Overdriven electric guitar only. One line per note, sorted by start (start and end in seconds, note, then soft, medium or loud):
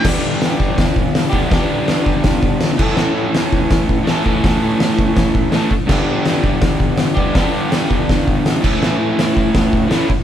0.02 1.31 G2 loud
0.02 1.31 D3 loud
0.02 1.32 G3 loud
0.02 1.31 B3 medium
0.07 1.31 D4 loud
0.07 1.29 G4 loud
1.30 1.50 G3 medium
1.30 1.50 B3 medium
1.30 1.50 D4 medium
1.30 1.49 G4 medium
1.35 1.47 G2 medium
1.35 1.48 D3 medium
1.48 2.77 G2 loud
1.48 2.77 D3 medium
1.48 2.78 G3 loud
1.48 2.78 B3 loud
1.52 2.79 D4 loud
1.52 2.80 G4 loud
2.77 4.03 A2 medium
2.77 4.04 E3 medium
2.77 4.06 A3 loud
2.77 4.07 C#4 loud
2.82 4.08 A4 loud
4.04 4.22 A2 medium
4.04 4.24 E3 medium
4.04 4.25 A3 medium
4.09 4.25 C#4 loud
4.09 4.26 A4 medium
4.23 5.50 A2 medium
4.23 5.52 E3 loud
4.23 5.53 A3 loud
4.28 5.54 C#4 loud
4.28 5.54 A4 loud
5.51 5.70 A2 medium
5.51 5.71 E3 medium
5.51 5.72 A3 medium
5.55 5.72 C#4 medium
5.55 5.72 A4 medium
5.86 7.15 G2 medium
5.86 7.16 D3 loud
5.86 7.16 G3 loud
5.86 7.16 B3 loud
5.91 7.15 D4 loud
5.91 7.13 G4 loud
7.14 7.35 G3 medium
7.14 7.35 B3 medium
7.14 7.34 D4 medium
7.14 7.34 G4 loud
7.19 7.33 G2 medium
7.19 7.34 D3 medium
7.34 8.62 G2 loud
7.34 8.61 D3 loud
7.34 8.62 G3 loud
7.34 8.63 B3 loud
7.34 8.64 D4 loud
7.39 8.65 G4 loud
8.61 9.87 A2 loud
8.61 9.88 E3 medium
8.61 9.89 A3 medium
8.66 9.90 C#4 medium
8.66 9.92 E4 loud
9.88 10.07 A2 medium
9.88 10.08 E3 medium
9.88 10.09 A3 medium
9.88 10.09 C#4 medium
9.93 10.10 E4 medium